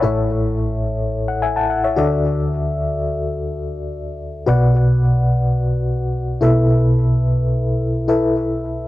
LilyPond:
<<
  \new Staff \with { instrumentName = "FM electric piano" } { \time 4/4 \key a \major \tempo 4 = 108 << { r2 r16 fis''16 <e'' gis''>16 <fis'' a''>16 fis''16 <cis'' e''>8 r16 | r1 | r1 | r1 | } \\ { <e' a' cis'' e''>2.~ <e' a' cis'' e''>8 <fis' a' d'' e''>8~ | <fis' a' d'' e''>2.~ <fis' a' d'' e''>8 r8 | <fis' b' d'' fis''>2.~ <fis' b' d'' fis''>8 <e' a' b' e''>8~ | <e' a' b' e''>2~ <e' a' b' e''>8 <e' a' b' e''>4. | } >> }
  \new Staff \with { instrumentName = "FM electric piano" } { \clef bass \time 4/4 \key a \major <a,, a,>2.~ <a,, a,>8 <d, d>8~ | <d, d>2.~ <d, d>8 r8 | <b,, b,>2.~ <b,, b,>8 <b,, b,>8~ | <b,, b,>2.~ <b,, b,>8 r8 | }
>>